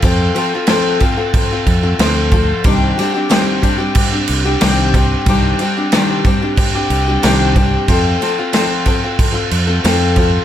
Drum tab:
CC |xxxxxxxx|xxxxxxxx|xxxxxxxx|xxxxxxxx|
SD |--o---o-|-oo---o-|--o---o-|-oo---o-|
BD |o--ooo-o|o--oo--o|o--oo--o|o--oo--o|